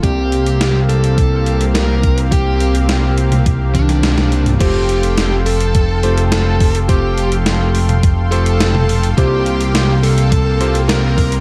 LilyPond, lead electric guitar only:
\new Staff \with { instrumentName = "Lead electric guitar" } { \time 4/4 \key f \major \tempo 4 = 105 g'4. a'4. bes'8. r16 | g'8. r4. r16 d'4. | g'4. a'4. a'8. r16 | g'8. r4. r16 a'4. |
g'4. a'4. bes'8. r16 | }